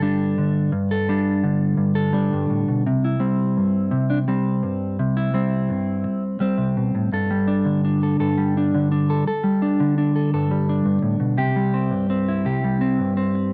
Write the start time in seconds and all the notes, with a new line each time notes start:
Already playing: G2 D3 A4
0.02 G3 D4
0.38 D3
0.72 G2
0.91 A4
1.09 G3 D4
1.43 D3
1.77 G2
1.95 A4
2.13 G3 D4
2.33 G2
2.50 A2
2.68 B2
2.86 C3
3.04 E4
3.20 G3 C4
3.57 G2
3.91 C3
4.10 D4
4.28 G3 C4
4.63 G2
4.99 C3
5.17 E4
5.34 G3 C4
5.69 G2
6.04 muted clean electric guitar stroke
6.40 G3 C4
6.58 C3
6.77 B2
6.95 A2
7.12 G2 A4
7.30 G3
7.48 D4
7.65 D3
7.85 D4
8.03 A4
8.20 G2 A4
8.38 G3
8.57 D4
8.74 D3
8.92 D4
9.10 A4
9.27 A4, muted clean electric guitar stroke
9.43 G3
9.62 D4
9.80 D3
9.98 D4
10.16 A4
10.34 G2 A4
10.51 G3
10.69 D4
10.85 G2
11.02 A2
11.20 B2
11.38 C3 G4
11.56 G3
11.74 C4
11.90 G2
12.10 C4
12.28 E4
12.45 C3 G4
12.64 G3
12.81 C4
12.99 G2
13.17 C4
13.35 muted clean electric guitar stroke